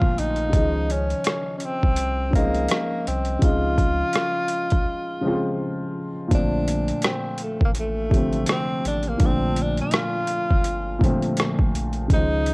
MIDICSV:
0, 0, Header, 1, 5, 480
1, 0, Start_track
1, 0, Tempo, 722892
1, 355, Time_signature, 4, 2, 24, 8
1, 8326, End_track
2, 0, Start_track
2, 0, Title_t, "Tenor saxophone"
2, 0, Program_c, 0, 66
2, 0, Note_on_c, 0, 65, 111
2, 126, Note_on_c, 0, 63, 103
2, 136, Note_off_c, 0, 65, 0
2, 606, Note_on_c, 0, 61, 103
2, 616, Note_off_c, 0, 63, 0
2, 1039, Note_off_c, 0, 61, 0
2, 1047, Note_on_c, 0, 61, 67
2, 1094, Note_on_c, 0, 60, 96
2, 1104, Note_off_c, 0, 61, 0
2, 1558, Note_off_c, 0, 60, 0
2, 1562, Note_on_c, 0, 58, 96
2, 2012, Note_off_c, 0, 58, 0
2, 2045, Note_on_c, 0, 60, 86
2, 2287, Note_on_c, 0, 65, 110
2, 2297, Note_off_c, 0, 60, 0
2, 3721, Note_off_c, 0, 65, 0
2, 4214, Note_on_c, 0, 62, 94
2, 4658, Note_off_c, 0, 62, 0
2, 4688, Note_on_c, 0, 60, 80
2, 4905, Note_off_c, 0, 60, 0
2, 4938, Note_on_c, 0, 57, 75
2, 5052, Note_off_c, 0, 57, 0
2, 5077, Note_on_c, 0, 58, 75
2, 5118, Note_off_c, 0, 58, 0
2, 5177, Note_on_c, 0, 57, 82
2, 5619, Note_off_c, 0, 57, 0
2, 5657, Note_on_c, 0, 60, 95
2, 5870, Note_off_c, 0, 60, 0
2, 5892, Note_on_c, 0, 62, 88
2, 6030, Note_on_c, 0, 58, 84
2, 6040, Note_off_c, 0, 62, 0
2, 6144, Note_on_c, 0, 60, 105
2, 6154, Note_off_c, 0, 58, 0
2, 6388, Note_on_c, 0, 62, 88
2, 6398, Note_off_c, 0, 60, 0
2, 6506, Note_off_c, 0, 62, 0
2, 6518, Note_on_c, 0, 65, 98
2, 7437, Note_off_c, 0, 65, 0
2, 8058, Note_on_c, 0, 63, 102
2, 8326, Note_off_c, 0, 63, 0
2, 8326, End_track
3, 0, Start_track
3, 0, Title_t, "Upright piano"
3, 0, Program_c, 1, 0
3, 0, Control_c, 1, 64, 127
3, 0, Note_on_c, 1, 46, 83
3, 0, Note_on_c, 1, 50, 66
3, 0, Note_on_c, 1, 53, 75
3, 0, Note_on_c, 1, 57, 69
3, 0, Note_on_c, 1, 60, 102
3, 183, Note_off_c, 1, 46, 0
3, 188, Note_off_c, 1, 50, 0
3, 194, Note_off_c, 1, 53, 0
3, 199, Note_off_c, 1, 57, 0
3, 205, Note_off_c, 1, 60, 0
3, 328, Note_on_c, 1, 49, 55
3, 342, Note_on_c, 1, 51, 50
3, 354, Note_on_c, 1, 56, 56
3, 362, Control_c, 1, 64, 0
3, 365, Note_on_c, 1, 72, 56
3, 374, Note_on_c, 1, 63, 70
3, 386, Note_on_c, 1, 53, 61
3, 397, Note_off_c, 1, 51, 0
3, 480, Control_c, 1, 64, 127
3, 1077, Note_off_c, 1, 49, 0
3, 1090, Note_off_c, 1, 56, 0
3, 1095, Note_off_c, 1, 72, 0
3, 1100, Note_off_c, 1, 63, 0
3, 1106, Note_off_c, 1, 53, 0
3, 1531, Note_on_c, 1, 61, 64
3, 1542, Note_on_c, 1, 53, 57
3, 1552, Note_on_c, 1, 56, 69
3, 1563, Note_on_c, 1, 60, 60
3, 1576, Note_on_c, 1, 63, 86
3, 2102, Note_off_c, 1, 61, 0
3, 2107, Note_off_c, 1, 53, 0
3, 2112, Note_off_c, 1, 56, 0
3, 2118, Note_off_c, 1, 60, 0
3, 2124, Note_off_c, 1, 63, 0
3, 2251, Note_on_c, 1, 49, 65
3, 2265, Note_on_c, 1, 53, 55
3, 2274, Note_on_c, 1, 56, 63
3, 2286, Note_on_c, 1, 60, 51
3, 2296, Note_on_c, 1, 63, 74
3, 2998, Note_off_c, 1, 49, 0
3, 3005, Note_off_c, 1, 53, 0
3, 3010, Note_off_c, 1, 56, 0
3, 3016, Note_off_c, 1, 60, 0
3, 3021, Note_off_c, 1, 63, 0
3, 3459, Note_on_c, 1, 49, 70
3, 3469, Note_on_c, 1, 53, 70
3, 3479, Note_on_c, 1, 56, 72
3, 3491, Note_on_c, 1, 60, 77
3, 3503, Note_on_c, 1, 65, 88
3, 4026, Note_off_c, 1, 49, 0
3, 4031, Note_off_c, 1, 53, 0
3, 4036, Note_off_c, 1, 56, 0
3, 4042, Note_off_c, 1, 60, 0
3, 4048, Note_off_c, 1, 65, 0
3, 4170, Note_on_c, 1, 46, 64
3, 4185, Note_on_c, 1, 50, 64
3, 4192, Note_on_c, 1, 53, 61
3, 4203, Note_on_c, 1, 57, 57
3, 4204, Control_c, 1, 64, 0
3, 4214, Note_on_c, 1, 60, 76
3, 4301, Control_c, 1, 64, 127
3, 4918, Note_off_c, 1, 46, 0
3, 4925, Note_off_c, 1, 50, 0
3, 4929, Note_off_c, 1, 53, 0
3, 4934, Note_off_c, 1, 57, 0
3, 4940, Note_off_c, 1, 60, 0
3, 5377, Note_on_c, 1, 48, 72
3, 5389, Note_on_c, 1, 50, 64
3, 5400, Note_on_c, 1, 53, 66
3, 5414, Note_on_c, 1, 57, 57
3, 5422, Note_on_c, 1, 60, 75
3, 5945, Note_off_c, 1, 48, 0
3, 5951, Note_off_c, 1, 50, 0
3, 5956, Note_off_c, 1, 53, 0
3, 5963, Note_off_c, 1, 57, 0
3, 5967, Note_off_c, 1, 60, 0
3, 6095, Note_on_c, 1, 46, 69
3, 6108, Note_on_c, 1, 50, 64
3, 6122, Note_on_c, 1, 53, 56
3, 6131, Note_on_c, 1, 57, 56
3, 6140, Note_on_c, 1, 62, 71
3, 6840, Note_off_c, 1, 46, 0
3, 6846, Note_off_c, 1, 50, 0
3, 6854, Note_off_c, 1, 53, 0
3, 6858, Note_off_c, 1, 57, 0
3, 6863, Note_off_c, 1, 62, 0
3, 7297, Note_on_c, 1, 46, 73
3, 7307, Note_on_c, 1, 50, 67
3, 7320, Note_on_c, 1, 53, 76
3, 7328, Note_on_c, 1, 57, 75
3, 7341, Note_on_c, 1, 60, 88
3, 7865, Note_off_c, 1, 46, 0
3, 7870, Note_off_c, 1, 50, 0
3, 7876, Note_off_c, 1, 53, 0
3, 7880, Note_off_c, 1, 57, 0
3, 7887, Note_off_c, 1, 60, 0
3, 8020, Note_on_c, 1, 49, 64
3, 8029, Note_on_c, 1, 51, 50
3, 8039, Note_on_c, 1, 56, 57
3, 8044, Control_c, 1, 64, 0
3, 8052, Note_on_c, 1, 72, 53
3, 8061, Note_on_c, 1, 63, 64
3, 8074, Note_on_c, 1, 53, 54
3, 8080, Note_off_c, 1, 51, 0
3, 8156, Control_c, 1, 64, 127
3, 8326, Note_off_c, 1, 49, 0
3, 8326, Note_off_c, 1, 53, 0
3, 8326, Note_off_c, 1, 56, 0
3, 8326, Note_off_c, 1, 63, 0
3, 8326, Note_off_c, 1, 72, 0
3, 8326, End_track
4, 0, Start_track
4, 0, Title_t, "Sub bass"
4, 0, Program_c, 2, 38
4, 119, Note_on_c, 2, 34, 92
4, 355, Note_on_c, 2, 37, 114
4, 364, Note_off_c, 2, 34, 0
4, 756, Note_off_c, 2, 37, 0
4, 1220, Note_on_c, 2, 36, 87
4, 1773, Note_off_c, 2, 36, 0
4, 2043, Note_on_c, 2, 36, 104
4, 2240, Note_off_c, 2, 36, 0
4, 2276, Note_on_c, 2, 37, 114
4, 2677, Note_off_c, 2, 37, 0
4, 3137, Note_on_c, 2, 34, 85
4, 3222, Note_off_c, 2, 34, 0
4, 4195, Note_on_c, 2, 34, 112
4, 4596, Note_off_c, 2, 34, 0
4, 5053, Note_on_c, 2, 33, 76
4, 5610, Note_off_c, 2, 33, 0
4, 5877, Note_on_c, 2, 33, 104
4, 6076, Note_off_c, 2, 33, 0
4, 6110, Note_on_c, 2, 34, 113
4, 6513, Note_off_c, 2, 34, 0
4, 6980, Note_on_c, 2, 31, 77
4, 7377, Note_off_c, 2, 31, 0
4, 7800, Note_on_c, 2, 34, 94
4, 8036, Note_on_c, 2, 37, 118
4, 8046, Note_off_c, 2, 34, 0
4, 8326, Note_off_c, 2, 37, 0
4, 8326, End_track
5, 0, Start_track
5, 0, Title_t, "Drums"
5, 12, Note_on_c, 9, 36, 81
5, 78, Note_off_c, 9, 36, 0
5, 121, Note_on_c, 9, 42, 58
5, 187, Note_off_c, 9, 42, 0
5, 239, Note_on_c, 9, 42, 32
5, 305, Note_off_c, 9, 42, 0
5, 352, Note_on_c, 9, 36, 112
5, 352, Note_on_c, 9, 42, 88
5, 419, Note_off_c, 9, 36, 0
5, 419, Note_off_c, 9, 42, 0
5, 596, Note_on_c, 9, 42, 58
5, 663, Note_off_c, 9, 42, 0
5, 731, Note_on_c, 9, 42, 33
5, 797, Note_off_c, 9, 42, 0
5, 825, Note_on_c, 9, 42, 79
5, 842, Note_on_c, 9, 37, 110
5, 891, Note_off_c, 9, 42, 0
5, 908, Note_off_c, 9, 37, 0
5, 1062, Note_on_c, 9, 42, 59
5, 1129, Note_off_c, 9, 42, 0
5, 1215, Note_on_c, 9, 36, 75
5, 1282, Note_off_c, 9, 36, 0
5, 1303, Note_on_c, 9, 42, 89
5, 1370, Note_off_c, 9, 42, 0
5, 1549, Note_on_c, 9, 36, 88
5, 1564, Note_on_c, 9, 42, 66
5, 1616, Note_off_c, 9, 36, 0
5, 1630, Note_off_c, 9, 42, 0
5, 1690, Note_on_c, 9, 42, 29
5, 1757, Note_off_c, 9, 42, 0
5, 1783, Note_on_c, 9, 42, 80
5, 1803, Note_on_c, 9, 37, 96
5, 1850, Note_off_c, 9, 42, 0
5, 1869, Note_off_c, 9, 37, 0
5, 2039, Note_on_c, 9, 42, 61
5, 2106, Note_off_c, 9, 42, 0
5, 2157, Note_on_c, 9, 42, 31
5, 2224, Note_off_c, 9, 42, 0
5, 2271, Note_on_c, 9, 42, 85
5, 2273, Note_on_c, 9, 36, 116
5, 2337, Note_off_c, 9, 42, 0
5, 2339, Note_off_c, 9, 36, 0
5, 2510, Note_on_c, 9, 36, 85
5, 2511, Note_on_c, 9, 42, 58
5, 2576, Note_off_c, 9, 36, 0
5, 2578, Note_off_c, 9, 42, 0
5, 2742, Note_on_c, 9, 42, 68
5, 2759, Note_on_c, 9, 37, 98
5, 2809, Note_off_c, 9, 42, 0
5, 2826, Note_off_c, 9, 37, 0
5, 2976, Note_on_c, 9, 42, 58
5, 3043, Note_off_c, 9, 42, 0
5, 3123, Note_on_c, 9, 42, 36
5, 3134, Note_on_c, 9, 36, 86
5, 3189, Note_off_c, 9, 42, 0
5, 3201, Note_off_c, 9, 36, 0
5, 4191, Note_on_c, 9, 36, 113
5, 4191, Note_on_c, 9, 42, 83
5, 4257, Note_off_c, 9, 36, 0
5, 4257, Note_off_c, 9, 42, 0
5, 4433, Note_on_c, 9, 42, 70
5, 4500, Note_off_c, 9, 42, 0
5, 4569, Note_on_c, 9, 42, 35
5, 4635, Note_off_c, 9, 42, 0
5, 4661, Note_on_c, 9, 42, 69
5, 4678, Note_on_c, 9, 37, 116
5, 4727, Note_off_c, 9, 42, 0
5, 4744, Note_off_c, 9, 37, 0
5, 4899, Note_on_c, 9, 42, 56
5, 4965, Note_off_c, 9, 42, 0
5, 5052, Note_on_c, 9, 36, 78
5, 5119, Note_off_c, 9, 36, 0
5, 5144, Note_on_c, 9, 42, 89
5, 5210, Note_off_c, 9, 42, 0
5, 5387, Note_on_c, 9, 36, 98
5, 5404, Note_on_c, 9, 42, 59
5, 5453, Note_off_c, 9, 36, 0
5, 5470, Note_off_c, 9, 42, 0
5, 5529, Note_on_c, 9, 42, 29
5, 5595, Note_off_c, 9, 42, 0
5, 5620, Note_on_c, 9, 42, 94
5, 5640, Note_on_c, 9, 37, 106
5, 5687, Note_off_c, 9, 42, 0
5, 5706, Note_off_c, 9, 37, 0
5, 5878, Note_on_c, 9, 42, 68
5, 5944, Note_off_c, 9, 42, 0
5, 5995, Note_on_c, 9, 42, 34
5, 6061, Note_off_c, 9, 42, 0
5, 6107, Note_on_c, 9, 42, 80
5, 6109, Note_on_c, 9, 36, 116
5, 6174, Note_off_c, 9, 42, 0
5, 6176, Note_off_c, 9, 36, 0
5, 6350, Note_on_c, 9, 42, 66
5, 6416, Note_off_c, 9, 42, 0
5, 6490, Note_on_c, 9, 42, 33
5, 6556, Note_off_c, 9, 42, 0
5, 6581, Note_on_c, 9, 42, 67
5, 6598, Note_on_c, 9, 37, 106
5, 6647, Note_off_c, 9, 42, 0
5, 6665, Note_off_c, 9, 37, 0
5, 6821, Note_on_c, 9, 42, 59
5, 6888, Note_off_c, 9, 42, 0
5, 6976, Note_on_c, 9, 36, 82
5, 7043, Note_off_c, 9, 36, 0
5, 7067, Note_on_c, 9, 42, 83
5, 7133, Note_off_c, 9, 42, 0
5, 7310, Note_on_c, 9, 36, 88
5, 7328, Note_on_c, 9, 42, 63
5, 7376, Note_off_c, 9, 36, 0
5, 7394, Note_off_c, 9, 42, 0
5, 7452, Note_on_c, 9, 42, 29
5, 7519, Note_off_c, 9, 42, 0
5, 7548, Note_on_c, 9, 42, 79
5, 7568, Note_on_c, 9, 37, 102
5, 7615, Note_off_c, 9, 42, 0
5, 7634, Note_off_c, 9, 37, 0
5, 7694, Note_on_c, 9, 36, 87
5, 7761, Note_off_c, 9, 36, 0
5, 7802, Note_on_c, 9, 42, 65
5, 7869, Note_off_c, 9, 42, 0
5, 7920, Note_on_c, 9, 42, 32
5, 7987, Note_off_c, 9, 42, 0
5, 8034, Note_on_c, 9, 36, 126
5, 8035, Note_on_c, 9, 42, 84
5, 8100, Note_off_c, 9, 36, 0
5, 8101, Note_off_c, 9, 42, 0
5, 8275, Note_on_c, 9, 42, 60
5, 8326, Note_off_c, 9, 42, 0
5, 8326, End_track
0, 0, End_of_file